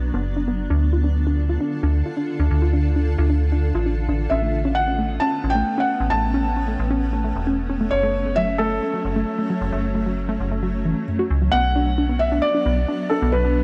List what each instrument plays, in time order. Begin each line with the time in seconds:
Already playing: fm bass B1, ambient pad F#3 B3 D4
0.14 fm bass F#1, synth arpeggio sound B3
0.36 synth arpeggio sound D4
0.48 synth arpeggio sound B3
0.70 fm bass D2, ambient pad D3 F4 A4, synth arpeggio sound D4
0.93 synth arpeggio sound F4
1.04 synth arpeggio sound D4
1.27 synth arpeggio sound D4
1.49 synth arpeggio sound F4
1.61 synth arpeggio sound D4
1.83 fm bass D2, synth arpeggio sound D4
2.06 synth arpeggio sound F4
2.17 synth arpeggio sound D4
2.39 fm bass D2, synth arpeggio sound D4
2.51 fm bass D2
2.62 synth arpeggio sound F4
2.73 synth arpeggio sound D4
2.96 synth arpeggio sound D4
3.18 fm bass D2, synth arpeggio sound F4
3.30 synth arpeggio sound D4
3.52 synth arpeggio sound D4
3.75 fm bass A1, synth arpeggio sound F4
3.86 synth arpeggio sound D4
4.09 fm bass A1, synth arpeggio sound D4
4.30 fm bass A1, ambient pad A3 B3 C#4, synth arpeggio sound C#4, felt piano E5
4.42 synth arpeggio sound A3
4.65 synth arpeggio sound C#4
4.75 felt piano F#5
4.88 synth arpeggio sound C#4
4.99 synth arpeggio sound A3
5.20 synth arpeggio sound C#4, felt piano A5
5.44 fm bass A1, synth arpeggio sound C#4
5.50 felt piano G5
5.55 synth arpeggio sound A3
5.78 synth arpeggio sound C#4, felt piano F#5
6.00 fm bass A1, synth arpeggio sound C#4
6.10 fm bass A1, synth arpeggio sound A3, felt piano A5
6.34 synth arpeggio sound C#4
6.57 synth arpeggio sound C#4
6.68 synth arpeggio sound A3
6.79 fm bass A1
6.91 synth arpeggio sound C#4
7.13 synth arpeggio sound C#4
7.24 synth arpeggio sound A3
7.36 fm bass E1
7.47 synth arpeggio sound C#4
7.70 synth arpeggio sound C#4
7.81 synth arpeggio sound A3
7.91 fm bass F#1, ambient pad F#3, felt piano C#5
8.03 synth arpeggio sound A3
8.26 synth arpeggio sound A3
8.36 synth arpeggio sound F#3, felt piano E5
8.58 synth arpeggio sound A3, felt piano A4
8.82 synth arpeggio sound A3
8.94 synth arpeggio sound F#3
9.05 fm bass F#1
9.16 synth arpeggio sound A3
9.39 synth arpeggio sound A3
9.50 synth arpeggio sound F#3
9.61 fm bass F#1
9.72 fm bass F#1, synth arpeggio sound A3
9.95 synth arpeggio sound A3
10.06 synth arpeggio sound F#3
10.29 synth arpeggio sound A3
10.40 fm bass F#1
10.51 synth arpeggio sound A3
10.63 synth arpeggio sound F#3
10.85 synth arpeggio sound E3
11.08 synth arpeggio sound F#2
11.19 synth arpeggio sound F#4
11.30 fm bass C#2
11.42 synth arpeggio sound F#3
11.52 fm bass B1, ambient pad F#3 B3 D4, synth arpeggio sound B3, felt piano F#5
11.76 synth arpeggio sound D4
11.98 synth arpeggio sound D4
12.09 synth arpeggio sound B3
12.19 felt piano E5
12.32 synth arpeggio sound D4
12.42 felt piano D5
12.54 synth arpeggio sound D4
12.66 fm bass B1, synth arpeggio sound B3
12.88 synth arpeggio sound D4
13.10 synth arpeggio sound D4, felt piano A4
13.22 fm bass B1, synth arpeggio sound B3
13.32 fm bass B1, ambient pad A3, felt piano B4
13.45 synth arpeggio sound D4